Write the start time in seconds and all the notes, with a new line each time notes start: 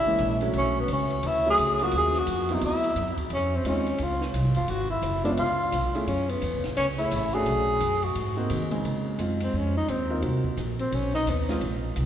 Already playing: F#1 E4
0.07 E3 G#3 A#3 C#4
0.18 A#1, hi-hat pedal, ride
0.40 D3 F#3 A3 C#4, ride
0.53 B1 C#4, ride
0.80 B3
0.88 C#2, hi-hat pedal, ride
0.92 C#4
1.10 ride
1.23 D2 E4, ride
1.46 D3 F#3 A3 C#4
1.50 G#4
1.57 C#2, hi-hat pedal, ride
1.79 F#3 A#3 C#4 F4, ride
1.83 F#4
1.91 D#2, ride
1.97 G#4
2.13 snare
2.19 F#4
2.27 F2, hi-hat pedal, ride
2.49 F#3 B3 C4 E4, ride
2.53 D#4
2.61 D2, ride
2.66 E4
2.84 ride
2.95 F#2, hi-hat pedal, ride
3.17 muted upright bass stroke, kick, ride
3.30 F2 C#4, ride
3.55 C4
3.64 D#2 G#3 C4 C#4 D#4 F4, hi-hat pedal, ride
3.86 ride
3.98 C#2, ride
4.03 F4
4.21 snare
4.33 C2, hi-hat pedal, ride
4.44 G#1
4.54 F1 F4, ride
4.68 G#1 F#4, ride
4.90 E4
5.02 F#1, hi-hat pedal, ride
5.24 G#3 B3 C#4 D4 F4, ride
5.37 C#2 F4, ride
5.72 B1, hi-hat pedal, ride
5.93 A3 C#4 E4 G#4, muted upright bass stroke, ride
6.07 F#2 C#4, ride
6.29 B3, ride
6.42 E2, hi-hat pedal, ride
6.54 C#2
6.64 A1, snare, ride
6.77 C#2 C#4, ride
6.98 A3 C#4 E4 G#4, ride
7.11 A1, hi-hat pedal, ride
7.33 A3 C#4 D4 F#4 G#4, ride
7.46 B1, ride
7.80 F#2, hi-hat pedal, ride
8.02 F#4, ride
8.15 G#2, ride
8.37 A#3 C4 D#4 F#4
8.50 D#3, hi-hat pedal, ride
8.71 C#3 G#3 C4 D#4 G#4, ride
8.84 C#3, ride
9.19 F#2 G#3 C4 D#4 F4, hi-hat pedal, ride
9.40 C4, ride
9.53 F2 C#4
9.77 D#4
9.88 D#2 C4, hi-hat pedal, ride
10.10 A#3 C4 D#4 F4
10.22 C2 A#3 C4 D#4 F#4, ride
10.44 muted upright bass stroke, kick
10.57 A#1, hi-hat pedal, ride
10.79 C4, ride
10.92 B1 C#4, ride
11.14 D#4, snare
11.26 D#2 B3, hi-hat pedal, ride
11.49 G#3 C4 C#4 F4, snare, ride
11.61 A#1, ride
11.96 C2, hi-hat pedal, ride